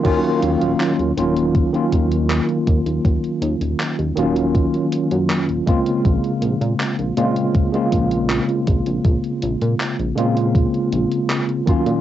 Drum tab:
CC |x---------------|----------------|----------------|----------------|
HH |xxxxxxxxxxxxxxxx|xxxxxxxxxxxxxxxx|xxxxxxxxxxxxxxxx|xxxxxxxxxxxxxxxx|
CP |----x-------x---|----x-------x---|----x-------x---|----x-------x---|
BD |o-------o-o---o-|o-------o-----o-|o-------o-o---o-|o-------o-----o-|